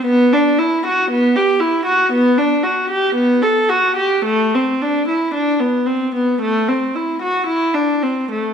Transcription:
0.05 B3
0.33 D4
0.58 E4
0.86 F#4
1.10 B3
1.36 G4
1.60 E4
1.85 F#4
2.12 B3
2.38 D4
2.63 F#4
2.90 G4
3.15 B3
3.42 A4
3.69 F#4
3.96 G4
4.25 A3
4.55 C4
4.82 D4
5.07 E4
5.34 D4
5.60 B3
5.86 C4
6.15 B3
6.41 A3
6.68 C4
6.95 E4
7.22 F#4
7.46 E4
7.74 D4
8.03 C4
8.31 A3

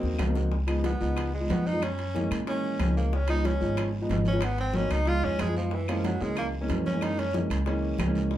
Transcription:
Already playing: F#3 A#3 C4 D#4
0.02 D#2 D#5, low bongo, high conga
0.19 C#2 F5, low bongo, high conga, high timbale, low timbale, short guiro, claves
0.26 F#3 A#3 C4 D#4
0.35 F#5, low bongo, high conga, short guiro
0.52 high bongo, high conga, long guiro
0.67 F3 G#3 B3 D#4, high bongo, high conga, high timbale, claves
0.84 B3, high bongo, high conga, high timbale, low timbale, short guiro
1.00 C#2 F3 G#3 B3 D#4, high conga, short guiro
1.17 high bongo, high conga, high timbale, long guiro, claves
1.33 G#3, high bongo, high conga
1.40 F3 G#3 B3 D#4
1.50 F#2 B3, high bongo, low bongo, high conga, high timbale, low timbale, short guiro
1.66 D#4, high bongo, high conga, short guiro
1.73 F3 G#3 B3 D#4
1.82 C#4, high bongo, high conga, high timbale, long guiro, claves
1.99 high bongo, high conga, high timbale
2.14 E3 G#3 A#3 C#4, high bongo, high conga, low timbale, short guiro
2.31 A#2, high timbale, short guiro, claves
2.46 E3 G#3 A#3 C#4, high bongo, high conga, high timbale, long guiro
2.64 high bongo, high conga
2.79 C#2, high bongo, low bongo, high conga, high timbale, low timbale, short guiro, claves
2.87 E3 G#3 A#3 C#4
2.97 A#3, high bongo, short guiro
3.13 C#4, high bongo, high conga, long guiro
3.28 F3 G#3 B3 D#4, high bongo, high conga, high timbale, claves
3.45 C#4, high bongo, high conga, high timbale, low timbale, short guiro
3.61 G#1 F3 G#3 B3 D#4, high conga, short guiro
3.77 high bongo, high conga, high timbale, long guiro, claves
3.93 high bongo, high conga
4.01 F3 G#3 B3 D#4
4.09 G#1, high bongo, low bongo, high conga, high timbale, low timbale, short guiro
4.25 C#4, high bongo, high conga, short guiro
4.33 F3 G#3 B3 D#4
4.41 B3, high bongo, high timbale, long guiro, claves
4.57 C4, high bongo, high conga, high timbale
4.73 F#3 A#3 B3 C#4 D#4, high bongo, high conga, low timbale, short guiro
4.91 C#2 D#4, high timbale, short guiro, claves
5.06 F3 G#3 B3 D#4 F4, high bongo, high conga, high timbale, long guiro
5.22 F2 C#4, high bongo, high conga
5.39 F#2 G#3, high bongo, low bongo, high conga, high timbale, low timbale, short guiro, claves
5.48 F3 G#3 B3 D#4
5.55 F3, high bongo, short guiro
5.71 E3, high bongo, high conga, long guiro
5.88 E3 F3 G#3 A#3 C#4, high bongo, high conga, high timbale, claves
6.04 F#3, high bongo, high conga, high timbale, low timbale, short guiro
6.20 C#2 E3 G#3 A#3 C#4, high conga, short guiro
6.37 A#3, high bongo, high conga, high timbale, long guiro, claves
6.53 high bongo, high conga
6.61 E3 G#3 A#3 C#4
6.69 F#2, high bongo, low bongo, high conga, high timbale, low timbale, short guiro
6.85 C#4, high bongo, high conga, short guiro
6.93 E3 G#3 A#3 C#4
7.01 D#4, high bongo, high timbale, long guiro, claves
7.18 C#4, high bongo, high conga, high timbale
7.33 E3 G#3 A#3 C#4, high bongo, high conga, low timbale, short guiro
7.50 C#2, high conga, high timbale, short guiro, claves
7.66 E3 G#3 A#3 C#4, high bongo, high conga, high timbale, long guiro
7.82 high bongo, high conga
7.98 C#2, high bongo, low bongo, high conga, high timbale, low timbale, short guiro, claves
8.06 E3 G#3 A#3 C#4
8.15 high bongo, short guiro
8.31 high bongo, high conga, long guiro

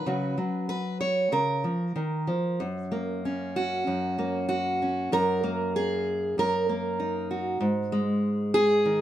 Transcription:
Already playing: C#4 B4
0.06 C#3 F#3 F#4
0.38 F#3
0.69 B4
1.01 C#5
1.32 C#3 A#4
1.64 F3
1.96 D#3
2.27 F3
2.60 F#2
2.92 A#3
3.25 C#4
3.56 F#4
3.87 F#2
4.18 A#3
4.49 F#4
4.82 C#4
5.12 F#2 A#4
5.43 A#3
5.76 G#4
6.38 F#2 A#4
6.69 A#3
7.00 D#4
7.31 F#4
7.61 G#2
7.92 G#3
8.54 G#4
8.85 D#3

